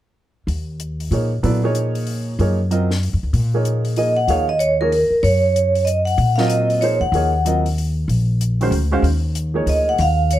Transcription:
0.47 D#2, open hi-hat
0.80 closed hi-hat
1.00 open hi-hat
1.11 A#2 F3 A#3 D#4 G#4 C#5, open hi-hat
1.43 A#2 F#3 B3 E4 A4 D5, open hi-hat
1.63 F3 A#3 D#4 G#4 C#5
1.75 closed hi-hat
1.95 open hi-hat
2.07 open hi-hat
2.39 F#2 F3 A#3 D#4 G#4 C#5, open hi-hat
2.71 F#3 C4 F4 A#4 D#5, closed hi-hat
2.91 snare
3.03 open hi-hat
3.13 F2
3.23 D2
3.33 A#2, open hi-hat
3.54 F3 A#3 D#4 G#4 C#5
3.65 closed hi-hat
3.85 open hi-hat
3.96 F3 A#3 D#4 G#4 D#5, open hi-hat
4.16 F#5
4.28 D#2 F3 A#3 D#4 G#4 C#5 F5, open hi-hat
4.49 D#5
4.59 C#5, closed hi-hat
4.81 F3 A#3 D#4 G#4 A#4 C#5
4.92 A#4, open hi-hat
5.10 muted upright bass stroke
5.23 F#2 C#5, open hi-hat
5.56 closed hi-hat
5.75 open hi-hat
5.85 D#5, closed hi-hat
6.05 F#5, open hi-hat
6.18 A#2, open hi-hat
6.36 F#3 C4 F4 F5, snare
6.40 A#4 D#5
6.48 D#5, closed hi-hat
6.70 open hi-hat
6.81 F3 A#3 D#4 G#4 C5 C#5, open hi-hat
7.01 E2 F#5
7.12 D#2 F3 A#3 D#4 G#4 C#5, open hi-hat
7.45 F#3 C4 F4 A#4 D#5, closed hi-hat
7.66 open hi-hat
7.78 open hi-hat
8.08 A#1, open hi-hat
8.41 closed hi-hat
8.61 D#3 G#3 C#4 F#4 C5, open hi-hat
8.71 D2, open hi-hat
8.92 G#3 C#4 F#4 C5 F5
9.02 D#2, open hi-hat
9.35 closed hi-hat
9.54 F3 A#3 D#4 G#4 C#5
9.66 D2 D#5, open hi-hat
9.89 F#5
9.98 D#2 F5, open hi-hat
10.31 C#5, closed hi-hat

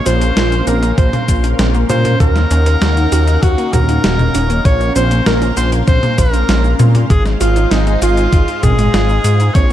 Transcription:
Already playing: A#3 C#4 A#4 F5 C6
0.06 A#1 F4 C5, closed hi-hat, shaker
0.21 C#4, closed hi-hat, shaker
0.37 A#1 F4, snare, closed hi-hat, shaker
0.52 C#4, closed hi-hat, shaker
0.67 A#1 C4 A#4, closed hi-hat, shaker
0.83 A#3, closed hi-hat, shaker
0.98 A#1 F4 C5, kick, closed hi-hat, shaker
1.13 C#4, closed hi-hat, mid tom, shaker
1.28 A#1 F4, kick, closed hi-hat, shaker
1.44 C#4, closed hi-hat, shaker
1.59 A#1 C4, snare, closed hi-hat, shaker
1.74 A#3, shaker
1.90 A#2 F4 C5, closed hi-hat, mid tom, shaker
2.05 C#4, closed hi-hat, mid tom, shaker
2.20 D#2 D#4 F#4 A#4 F#5, kick, closed hi-hat, shaker
2.36 D#4, snare, shaker
2.51 D#2 C#4, closed hi-hat, shaker
2.66 A#3, closed hi-hat, shaker
2.82 D#2 F#4, snare, closed hi-hat, shaker
2.97 D#4, closed hi-hat, shaker
3.12 D#2 F#4, closed hi-hat, shaker
3.27 D#4, closed hi-hat, shaker
3.43 D#2 C#4 F#4, kick, closed hi-hat, shaker
3.58 A#3, closed hi-hat, shaker
3.73 D#2 F#4 A#4, kick, closed hi-hat, mid tom, shaker
3.89 D#4, closed hi-hat, shaker
4.04 D#1 F#4, snare, closed hi-hat, shaker
4.19 D#4, mid tom, shaker
4.35 D#1 C#4, closed hi-hat, shaker
4.50 A#3, closed hi-hat, shaker
4.65 A#1 A#3 F4 A#4 C#5 F5 C6, kick, closed hi-hat, shaker
4.80 C#4, shaker
4.96 A#1 C4 C5, closed hi-hat, shaker
5.11 A#3, closed hi-hat, shaker
5.26 A#1 F4 A#4, snare, closed hi-hat, shaker
5.42 C#4, closed hi-hat, shaker
5.57 A#1 F4 C5, closed hi-hat, shaker
5.72 C#4, closed hi-hat, shaker
5.88 A#1 C4 C5, kick, closed hi-hat, shaker
6.03 A#3, closed hi-hat, mid tom, shaker
6.18 A#1 F4 A#4, kick, closed hi-hat, shaker
6.33 C#4, closed hi-hat, shaker
6.49 A#1 F4, snare, closed hi-hat, shaker
6.64 C#4, shaker
6.79 A#2 C4, closed hi-hat, mid tom, shaker
6.95 A#3, closed hi-hat, mid tom, shaker
7.10 G#1 G#3 F4 G#4 C5 D#5, kick, closed hi-hat, shaker
7.25 D#4, snare, shaker
7.41 G#1 F4, closed hi-hat, shaker
7.56 D#4, closed hi-hat, shaker
7.71 G#1 C4 D#4, snare, closed hi-hat, shaker
7.87 G#3, closed hi-hat, shaker
8.02 G#1 F4, closed hi-hat, shaker
8.17 D#4, closed hi-hat, shaker
8.33 G#1 F4, kick, closed hi-hat, shaker
8.48 D#4, closed hi-hat, shaker
8.63 G#1 C4 G#4, kick, closed hi-hat, mid tom, shaker
8.79 G#3, closed hi-hat, shaker
8.94 G#1 F4, snare, closed hi-hat, shaker
9.09 D#4, shaker
9.24 G#2 F4, closed hi-hat, shaker
9.40 D#4, closed hi-hat, shaker
9.55 A#1 A#3 C4 C#4 A#4 C#5 C6, kick, closed hi-hat, shaker

